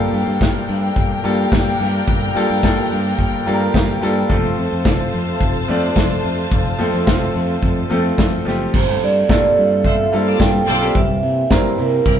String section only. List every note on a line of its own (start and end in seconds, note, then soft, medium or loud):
0.00 4.26 D4 medium
0.00 4.26 A#4 medium
0.00 4.26 G5 medium
4.30 8.70 F4 medium
4.30 8.70 C5 medium
4.30 8.70 A5 medium
10.26 10.38 F4 medium
10.26 10.38 D5 medium
10.26 10.38 A5 loud
10.67 10.91 F4 medium
10.67 10.91 D5 loud
10.67 10.91 A5 loud